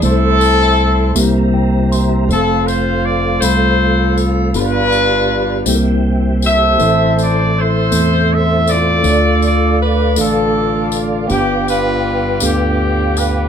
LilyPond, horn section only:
\new Staff \with { instrumentName = "Horn section" } { \time 6/8 \key c \major \tempo 4. = 53 << { a'4. r4. | a'8 c''8 d''8 c''4 r8 | b'4. r4 e''8~ | e''8 d''8 c''4 e''8 d''8~ |
d''8 d''8 b'8 a'4 r8 | g'8 b'4 g'4 b'8 | } \\ { <c' e'>4. r4. | <c' f'>4. <f' a'>4. | <d' f'>4. r4 <a' c''>8~ | <a' c''>4 <e' a'>4. <f' a'>8~ |
<f' a'>4 r8 <d' f'>4. | <b d'>8 <d' f'>4 <b d'>4. | } >> }